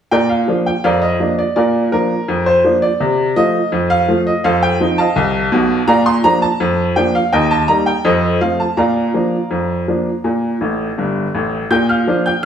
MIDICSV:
0, 0, Header, 1, 2, 480
1, 0, Start_track
1, 0, Key_signature, -2, "major"
1, 0, Tempo, 720288
1, 78, Time_signature, 2, 2, 24, 8
1, 4877, Tempo, 729927
1, 8252, End_track
2, 0, Start_track
2, 0, Title_t, "Upright piano"
2, 0, Program_c, 0, 0
2, 77, Note_on_c, 0, 79, 81
2, 79, Note_on_c, 0, 46, 69
2, 84, Note_on_c, 0, 74, 62
2, 86, Note_on_c, 0, 70, 61
2, 194, Note_off_c, 0, 74, 0
2, 195, Note_off_c, 0, 70, 0
2, 197, Note_on_c, 0, 77, 67
2, 198, Note_off_c, 0, 79, 0
2, 284, Note_off_c, 0, 46, 0
2, 320, Note_on_c, 0, 53, 48
2, 323, Note_on_c, 0, 58, 42
2, 325, Note_on_c, 0, 62, 42
2, 391, Note_off_c, 0, 77, 0
2, 442, Note_on_c, 0, 79, 67
2, 453, Note_off_c, 0, 53, 0
2, 454, Note_off_c, 0, 58, 0
2, 456, Note_off_c, 0, 62, 0
2, 560, Note_on_c, 0, 77, 75
2, 561, Note_on_c, 0, 41, 67
2, 562, Note_off_c, 0, 79, 0
2, 567, Note_on_c, 0, 70, 62
2, 567, Note_on_c, 0, 74, 64
2, 676, Note_off_c, 0, 70, 0
2, 676, Note_off_c, 0, 74, 0
2, 677, Note_on_c, 0, 75, 72
2, 681, Note_off_c, 0, 77, 0
2, 766, Note_off_c, 0, 41, 0
2, 799, Note_on_c, 0, 53, 38
2, 804, Note_on_c, 0, 58, 44
2, 806, Note_on_c, 0, 62, 48
2, 871, Note_off_c, 0, 75, 0
2, 923, Note_on_c, 0, 74, 63
2, 932, Note_off_c, 0, 53, 0
2, 935, Note_off_c, 0, 58, 0
2, 937, Note_off_c, 0, 62, 0
2, 1029, Note_off_c, 0, 74, 0
2, 1039, Note_on_c, 0, 74, 68
2, 1042, Note_on_c, 0, 46, 65
2, 1046, Note_on_c, 0, 70, 54
2, 1047, Note_on_c, 0, 65, 50
2, 1233, Note_off_c, 0, 74, 0
2, 1247, Note_off_c, 0, 46, 0
2, 1269, Note_off_c, 0, 65, 0
2, 1269, Note_off_c, 0, 70, 0
2, 1281, Note_on_c, 0, 70, 74
2, 1283, Note_on_c, 0, 53, 37
2, 1285, Note_on_c, 0, 58, 40
2, 1288, Note_on_c, 0, 62, 46
2, 1415, Note_off_c, 0, 53, 0
2, 1417, Note_off_c, 0, 58, 0
2, 1419, Note_off_c, 0, 62, 0
2, 1522, Note_on_c, 0, 41, 66
2, 1626, Note_off_c, 0, 70, 0
2, 1641, Note_on_c, 0, 72, 82
2, 1728, Note_off_c, 0, 41, 0
2, 1763, Note_on_c, 0, 53, 45
2, 1766, Note_on_c, 0, 58, 40
2, 1768, Note_on_c, 0, 62, 44
2, 1835, Note_off_c, 0, 72, 0
2, 1880, Note_on_c, 0, 74, 73
2, 1895, Note_off_c, 0, 53, 0
2, 1898, Note_off_c, 0, 58, 0
2, 1900, Note_off_c, 0, 62, 0
2, 2002, Note_on_c, 0, 48, 68
2, 2207, Note_off_c, 0, 48, 0
2, 2224, Note_off_c, 0, 74, 0
2, 2242, Note_on_c, 0, 53, 45
2, 2242, Note_on_c, 0, 75, 90
2, 2246, Note_on_c, 0, 57, 48
2, 2248, Note_on_c, 0, 65, 45
2, 2375, Note_off_c, 0, 53, 0
2, 2377, Note_off_c, 0, 57, 0
2, 2379, Note_off_c, 0, 65, 0
2, 2481, Note_on_c, 0, 41, 66
2, 2585, Note_off_c, 0, 75, 0
2, 2599, Note_on_c, 0, 77, 95
2, 2686, Note_off_c, 0, 41, 0
2, 2722, Note_on_c, 0, 53, 53
2, 2724, Note_on_c, 0, 57, 45
2, 2728, Note_on_c, 0, 65, 50
2, 2793, Note_off_c, 0, 77, 0
2, 2843, Note_on_c, 0, 75, 74
2, 2854, Note_off_c, 0, 53, 0
2, 2855, Note_off_c, 0, 57, 0
2, 2858, Note_off_c, 0, 65, 0
2, 2961, Note_on_c, 0, 77, 89
2, 2962, Note_on_c, 0, 41, 74
2, 2963, Note_off_c, 0, 75, 0
2, 2967, Note_on_c, 0, 69, 66
2, 2968, Note_on_c, 0, 72, 66
2, 3077, Note_off_c, 0, 69, 0
2, 3077, Note_off_c, 0, 72, 0
2, 3082, Note_off_c, 0, 77, 0
2, 3083, Note_on_c, 0, 79, 88
2, 3166, Note_off_c, 0, 41, 0
2, 3203, Note_on_c, 0, 53, 44
2, 3205, Note_on_c, 0, 60, 49
2, 3209, Note_on_c, 0, 63, 52
2, 3310, Note_off_c, 0, 79, 0
2, 3320, Note_on_c, 0, 81, 84
2, 3326, Note_on_c, 0, 75, 60
2, 3327, Note_on_c, 0, 77, 65
2, 3334, Note_off_c, 0, 53, 0
2, 3335, Note_off_c, 0, 60, 0
2, 3338, Note_off_c, 0, 63, 0
2, 3439, Note_on_c, 0, 36, 83
2, 3643, Note_off_c, 0, 36, 0
2, 3678, Note_on_c, 0, 35, 69
2, 3679, Note_on_c, 0, 47, 82
2, 3870, Note_off_c, 0, 35, 0
2, 3871, Note_off_c, 0, 47, 0
2, 3892, Note_off_c, 0, 81, 0
2, 3895, Note_off_c, 0, 75, 0
2, 3896, Note_off_c, 0, 77, 0
2, 3916, Note_on_c, 0, 46, 84
2, 3916, Note_on_c, 0, 82, 102
2, 3922, Note_on_c, 0, 77, 69
2, 3924, Note_on_c, 0, 74, 72
2, 4032, Note_off_c, 0, 77, 0
2, 4034, Note_off_c, 0, 74, 0
2, 4037, Note_off_c, 0, 82, 0
2, 4038, Note_on_c, 0, 84, 92
2, 4121, Note_off_c, 0, 46, 0
2, 4158, Note_on_c, 0, 82, 105
2, 4159, Note_off_c, 0, 84, 0
2, 4160, Note_on_c, 0, 53, 51
2, 4162, Note_on_c, 0, 58, 52
2, 4165, Note_on_c, 0, 62, 60
2, 4279, Note_off_c, 0, 82, 0
2, 4279, Note_on_c, 0, 81, 89
2, 4291, Note_off_c, 0, 53, 0
2, 4293, Note_off_c, 0, 58, 0
2, 4295, Note_off_c, 0, 62, 0
2, 4400, Note_on_c, 0, 41, 76
2, 4567, Note_off_c, 0, 81, 0
2, 4604, Note_off_c, 0, 41, 0
2, 4638, Note_on_c, 0, 79, 84
2, 4640, Note_on_c, 0, 53, 49
2, 4643, Note_on_c, 0, 58, 49
2, 4646, Note_on_c, 0, 62, 49
2, 4759, Note_off_c, 0, 79, 0
2, 4765, Note_on_c, 0, 77, 81
2, 4772, Note_off_c, 0, 53, 0
2, 4774, Note_off_c, 0, 58, 0
2, 4776, Note_off_c, 0, 62, 0
2, 4882, Note_off_c, 0, 77, 0
2, 4882, Note_on_c, 0, 79, 83
2, 4883, Note_on_c, 0, 39, 76
2, 4887, Note_on_c, 0, 70, 68
2, 4889, Note_on_c, 0, 75, 69
2, 4994, Note_off_c, 0, 70, 0
2, 4995, Note_off_c, 0, 75, 0
2, 5000, Note_off_c, 0, 79, 0
2, 5002, Note_on_c, 0, 81, 87
2, 5084, Note_off_c, 0, 39, 0
2, 5115, Note_on_c, 0, 82, 92
2, 5116, Note_on_c, 0, 55, 49
2, 5119, Note_on_c, 0, 58, 42
2, 5120, Note_off_c, 0, 81, 0
2, 5122, Note_on_c, 0, 63, 52
2, 5235, Note_on_c, 0, 79, 82
2, 5236, Note_off_c, 0, 82, 0
2, 5248, Note_off_c, 0, 55, 0
2, 5250, Note_off_c, 0, 58, 0
2, 5252, Note_off_c, 0, 63, 0
2, 5355, Note_off_c, 0, 79, 0
2, 5356, Note_on_c, 0, 75, 79
2, 5357, Note_on_c, 0, 41, 85
2, 5362, Note_on_c, 0, 69, 64
2, 5363, Note_on_c, 0, 72, 59
2, 5548, Note_off_c, 0, 75, 0
2, 5560, Note_off_c, 0, 41, 0
2, 5583, Note_off_c, 0, 69, 0
2, 5583, Note_off_c, 0, 72, 0
2, 5596, Note_on_c, 0, 77, 74
2, 5598, Note_on_c, 0, 53, 43
2, 5599, Note_on_c, 0, 57, 40
2, 5603, Note_on_c, 0, 60, 41
2, 5716, Note_off_c, 0, 77, 0
2, 5718, Note_on_c, 0, 81, 69
2, 5730, Note_off_c, 0, 53, 0
2, 5731, Note_off_c, 0, 57, 0
2, 5733, Note_off_c, 0, 60, 0
2, 5833, Note_on_c, 0, 46, 65
2, 5833, Note_on_c, 0, 82, 69
2, 5838, Note_off_c, 0, 81, 0
2, 5841, Note_on_c, 0, 74, 56
2, 5841, Note_on_c, 0, 77, 55
2, 6040, Note_off_c, 0, 46, 0
2, 6077, Note_on_c, 0, 53, 46
2, 6079, Note_on_c, 0, 58, 43
2, 6082, Note_on_c, 0, 62, 42
2, 6210, Note_off_c, 0, 53, 0
2, 6211, Note_off_c, 0, 58, 0
2, 6213, Note_off_c, 0, 62, 0
2, 6316, Note_on_c, 0, 41, 54
2, 6522, Note_off_c, 0, 41, 0
2, 6563, Note_on_c, 0, 53, 37
2, 6564, Note_on_c, 0, 58, 38
2, 6567, Note_on_c, 0, 62, 40
2, 6695, Note_off_c, 0, 53, 0
2, 6696, Note_off_c, 0, 58, 0
2, 6698, Note_off_c, 0, 62, 0
2, 6801, Note_on_c, 0, 46, 58
2, 7006, Note_off_c, 0, 46, 0
2, 7042, Note_on_c, 0, 33, 52
2, 7043, Note_on_c, 0, 45, 55
2, 7184, Note_off_c, 0, 82, 0
2, 7223, Note_off_c, 0, 33, 0
2, 7223, Note_off_c, 0, 45, 0
2, 7285, Note_on_c, 0, 31, 52
2, 7286, Note_on_c, 0, 43, 53
2, 7465, Note_off_c, 0, 31, 0
2, 7466, Note_off_c, 0, 43, 0
2, 7500, Note_off_c, 0, 74, 0
2, 7500, Note_off_c, 0, 77, 0
2, 7526, Note_on_c, 0, 33, 57
2, 7527, Note_on_c, 0, 45, 58
2, 7705, Note_off_c, 0, 33, 0
2, 7706, Note_off_c, 0, 45, 0
2, 7763, Note_on_c, 0, 46, 78
2, 7763, Note_on_c, 0, 91, 85
2, 7769, Note_on_c, 0, 79, 64
2, 7878, Note_off_c, 0, 79, 0
2, 7883, Note_off_c, 0, 91, 0
2, 7885, Note_on_c, 0, 89, 66
2, 7891, Note_on_c, 0, 77, 58
2, 7966, Note_off_c, 0, 46, 0
2, 8005, Note_on_c, 0, 53, 49
2, 8006, Note_on_c, 0, 58, 41
2, 8008, Note_on_c, 0, 62, 61
2, 8074, Note_off_c, 0, 89, 0
2, 8108, Note_off_c, 0, 77, 0
2, 8125, Note_on_c, 0, 91, 78
2, 8133, Note_on_c, 0, 79, 52
2, 8134, Note_off_c, 0, 53, 0
2, 8136, Note_off_c, 0, 58, 0
2, 8137, Note_off_c, 0, 62, 0
2, 8238, Note_off_c, 0, 79, 0
2, 8242, Note_off_c, 0, 91, 0
2, 8252, End_track
0, 0, End_of_file